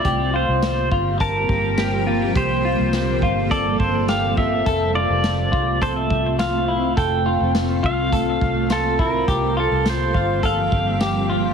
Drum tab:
HH |x-x-x-x-|x-x-x-x-|x-x-x-x-|x-x-x-x-|
TB |--x---x-|--x---x-|--x---x-|--x---x-|
SD |--o---o-|--o---o-|--o---o-|--o---o-|
BD |o--ooo--|o--ooo-o|o--ooo--|o--ooo-o|

HH |x-x-x-x-|
TB |--x---x-|
SD |--o---o-|
BD |o--ooo--|